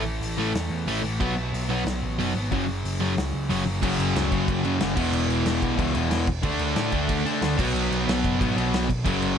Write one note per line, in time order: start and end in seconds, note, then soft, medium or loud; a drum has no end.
0.00 0.20 A1 medium
0.00 1.03 A2 medium
0.00 1.03 E3 loud
0.00 1.01 A3 medium
0.21 0.37 A1 medium
0.21 open hi-hat medium
0.37 0.54 A1 medium
0.37 0.51 A2 medium
0.37 0.51 E3 loud
0.37 0.51 A3 medium
0.54 0.70 E2 medium
0.54 snare loud
0.54 open hi-hat medium
0.71 0.86 E2 medium
0.86 1.03 A1 medium
0.86 1.01 A2 loud
0.86 1.01 E3 loud
0.86 1.01 A3 loud
0.86 open hi-hat medium
1.02 1.19 A1 loud
1.02 1.19 A2 medium
1.02 1.19 E3 medium
1.02 1.18 A3 medium
1.20 1.52 B1 loud
1.20 2.34 B2 medium
1.20 1.33 B2 medium
1.20 1.34 F#3 loud
1.20 2.36 F#3 medium
1.20 1.34 B3 loud
1.20 2.33 B3 medium
1.20 kick loud
1.20 crash medium
1.53 1.84 B1 medium
1.53 open hi-hat medium
1.70 1.83 B2 medium
1.70 1.83 F#3 medium
1.70 1.83 B3 loud
1.85 2.01 B1 medium
1.85 snare loud
1.85 open hi-hat medium
2.03 2.18 A1 medium
2.18 2.34 F#1 loud
2.18 2.32 B2 medium
2.18 2.32 F#3 loud
2.18 2.32 B3 loud
2.18 open hi-hat medium
2.34 2.51 G#1 medium
2.34 2.52 B2 medium
2.34 2.54 F#3 medium
2.34 2.50 B3 medium
2.51 2.83 F#1 medium
2.51 2.64 F#2 loud
2.51 3.65 F#2 medium
2.51 2.65 C#3 medium
2.51 3.65 C#3 loud
2.51 2.65 F#3 loud
2.51 3.64 F#3 loud
2.51 kick loud
2.51 open hi-hat medium
2.85 3.00 F#1 medium
2.85 open hi-hat medium
3.00 3.16 F#1 medium
3.00 3.13 F#2 medium
3.00 3.14 C#3 loud
3.00 3.14 F#3 loud
3.18 3.33 C#2 medium
3.18 snare loud
3.18 open hi-hat medium
3.34 3.50 C#2 medium
3.49 3.66 F#1 loud
3.49 3.62 F#2 medium
3.49 3.63 C#3 loud
3.49 3.63 F#3 loud
3.49 open hi-hat medium
3.65 3.82 F#1 medium
3.65 3.80 F#2 medium
3.65 3.81 C#3 medium
3.65 3.81 F#3 medium
3.81 3.97 F#1 loud
3.81 4.30 F#2 medium
3.81 4.63 F#2 medium
3.81 4.30 C#3 loud
3.81 4.64 C#3 loud
3.81 4.29 F#3 loud
3.81 kick loud
3.81 crash loud
3.81 crash medium
3.85 4.63 F#3 loud
3.99 4.13 F#1 medium
3.99 crash medium
4.15 4.29 C#2 loud
4.15 snare loud
4.15 crash medium
4.30 4.46 F#1 medium
4.30 4.95 F#2 medium
4.30 4.96 C#3 medium
4.30 4.95 F#3 loud
4.30 kick medium
4.30 crash medium
4.48 4.62 F#1 medium
4.48 kick loud
4.48 crash medium
4.64 4.78 F#2 loud
4.64 4.79 F#2 medium
4.64 4.80 C#3 medium
4.64 4.79 F#3 medium
4.64 crash medium
4.80 4.95 F#1 loud
4.80 4.95 F#2 medium
4.80 4.96 C#3 medium
4.80 4.97 F#3 medium
4.80 snare loud
4.80 crash medium
4.95 5.11 E1 loud
4.95 5.44 E2 medium
4.95 5.76 E2 medium
4.95 5.44 B2 loud
4.95 5.77 B2 loud
4.95 5.45 E3 loud
4.95 5.78 E3 loud
4.95 kick loud
4.95 crash loud
5.13 5.27 E1 loud
5.13 crash medium
5.29 5.43 E1 loud
5.29 crash medium
5.45 5.60 E1 loud
5.45 6.26 E2 medium
5.45 6.27 B2 medium
5.45 6.27 E3 loud
5.45 snare loud
5.45 crash medium
5.62 5.76 B1 medium
5.62 kick medium
5.62 crash medium
5.77 5.93 C#2 loud
5.77 5.93 E2 medium
5.77 5.93 B2 medium
5.77 5.94 E3 loud
5.77 kick loud
5.77 crash medium
5.95 6.09 E1 loud
5.95 6.27 E2 medium
5.95 6.27 B2 medium
5.95 6.26 E3 medium
5.95 crash medium
6.11 6.25 E1 loud
6.11 snare loud
6.11 crash loud
6.27 6.42 E1 loud
6.27 kick loud
6.27 crash medium
6.42 6.58 D2 loud
6.42 7.24 D3 medium
6.42 6.91 D3 medium
6.42 7.25 A3 loud
6.42 6.92 A3 loud
6.42 7.24 D4 loud
6.42 6.91 D4 loud
6.42 kick loud
6.42 crash loud
6.59 6.74 D2 medium
6.59 crash medium
6.76 6.90 A2 medium
6.76 snare loud
6.76 crash medium
6.92 7.07 D2 medium
6.92 7.57 D3 medium
6.92 7.57 A3 medium
6.92 7.57 D4 medium
6.92 kick medium
6.92 crash medium
7.09 7.23 D2 loud
7.09 kick loud
7.09 crash medium
7.26 7.40 D3 loud
7.26 7.41 D3 medium
7.26 7.41 A3 medium
7.26 7.41 D4 loud
7.26 crash medium
7.42 7.56 D2 loud
7.42 7.57 D3 medium
7.42 7.58 A3 medium
7.42 7.58 D4 medium
7.42 snare loud
7.42 crash medium
7.57 7.73 B1 loud
7.57 8.05 B2 loud
7.57 8.38 B2 medium
7.57 8.08 F#3 loud
7.57 8.39 F#3 loud
7.57 8.07 B3 loud
7.57 8.40 B3 loud
7.57 kick loud
7.57 crash loud
7.75 7.89 B1 loud
7.75 crash medium
7.91 8.05 B1 medium
7.91 crash medium
8.07 8.21 B1 medium
8.07 8.87 B2 medium
8.07 8.88 F#3 loud
8.07 8.89 B3 medium
8.07 snare loud
8.07 crash medium
8.25 8.38 F#1 medium
8.25 kick medium
8.25 crash medium
8.39 8.55 G#2 medium
8.39 8.55 B2 medium
8.39 8.55 F#3 medium
8.39 8.54 B3 medium
8.39 kick loud
8.39 crash medium
8.55 8.71 B1 loud
8.55 8.88 B2 medium
8.55 8.88 F#3 medium
8.55 8.87 B3 medium
8.55 crash medium
8.73 8.87 B1 loud
8.73 snare loud
8.73 crash medium
8.90 9.03 B1 loud
8.90 kick medium
8.90 crash medium
9.04 9.20 F#1 loud
9.04 9.38 F#2 medium
9.04 9.38 C#3 loud
9.04 9.38 F#3 loud
9.04 kick loud
9.04 crash loud
9.21 9.35 F#1 medium
9.21 crash medium